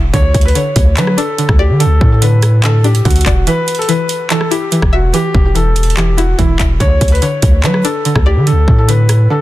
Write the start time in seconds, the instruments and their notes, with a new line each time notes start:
Already playing: 808-style bass E1, synth pluck E3 E4 E5
0.13 808-style bass D2, synth pluck D3, felt piano C#5, kick, closed hi-hat
0.34 808-style bass D2, kick, closed hi-hat
0.41 felt piano B4, closed hi-hat
0.48 closed hi-hat
0.55 synth pluck D3, felt piano C#5, closed hi-hat
0.76 808-style bass D2, kick, closed hi-hat
0.97 synth pluck D3, 808-style bass F#3, felt piano B4, clap, closed hi-hat
1.07 cross-stick
1.18 synth pluck D4, felt piano A4, closed hi-hat
1.38 synth pluck D3, closed hi-hat
1.49 808-style bass D2, kick, cross-stick
1.59 felt piano G4, synth pluck D5
1.70 808-style bass D3
1.80 synth pluck D3, felt piano A4, closed hi-hat
1.86 808-style bass D2
2.01 808-style bass A2, kick
2.12 felt piano A4
2.21 synth pluck D3, felt piano B4, closed hi-hat
2.42 cross-stick, closed hi-hat
2.63 synth pluck D3, felt piano A4, clap, closed hi-hat
2.84 synth pluck D4, felt piano G4, closed hi-hat
2.95 closed hi-hat
3.05 808-style bass D2, synth pluck D3, felt piano F#4, kick, closed hi-hat
3.10 closed hi-hat
3.16 closed hi-hat
3.21 closed hi-hat
3.26 808-style bass E1, felt piano F#4, synth pluck D5, kick, clap, closed hi-hat
3.47 synth pluck E3, felt piano B4, closed hi-hat
3.68 closed hi-hat
3.75 felt piano A4, closed hi-hat
3.82 closed hi-hat
3.88 synth pluck E3, felt piano B4, closed hi-hat
4.09 closed hi-hat
4.30 synth pluck E3, felt piano A4, clap, closed hi-hat
4.41 cross-stick
4.51 synth pluck E4, felt piano G4, closed hi-hat
4.72 synth pluck E3, closed hi-hat
4.82 808-style bass E1, kick, cross-stick
4.93 felt piano F#4, synth pluck E5
5.13 synth pluck E3, felt piano G4, closed hi-hat
5.35 808-style bass E1, kick
5.45 felt piano G4
5.55 synth pluck E3, felt piano A4, closed hi-hat
5.76 closed hi-hat, open hi-hat
5.83 closed hi-hat
5.90 closed hi-hat
5.97 synth pluck E3, felt piano G4, clap, closed hi-hat
6.17 synth pluck E4, felt piano F#4, closed hi-hat
6.39 808-style bass E1, synth pluck E3, felt piano E4, kick, closed hi-hat
6.59 808-style bass E1, synth pluck E5, kick, clap, closed hi-hat
6.80 808-style bass D2, synth pluck D3, felt piano C#5, kick, closed hi-hat
7.01 808-style bass D2, kick, closed hi-hat
7.08 closed hi-hat
7.12 felt piano B4, closed hi-hat
7.22 synth pluck D3, felt piano C#5, closed hi-hat
7.42 808-style bass D2, kick, closed hi-hat
7.64 synth pluck D3, 808-style bass F#3, felt piano B4, clap, closed hi-hat
7.74 cross-stick
7.84 synth pluck D4, felt piano A4, closed hi-hat
8.05 synth pluck D3, closed hi-hat
8.16 808-style bass D2, kick, cross-stick
8.26 felt piano G4, synth pluck D5
8.37 808-style bass D3
8.47 synth pluck D3, felt piano A4, closed hi-hat
8.52 808-style bass D2
8.68 808-style bass A2, kick
8.78 felt piano A4
8.88 synth pluck D3, felt piano B4, closed hi-hat
9.09 cross-stick, closed hi-hat
9.30 synth pluck D3, felt piano A4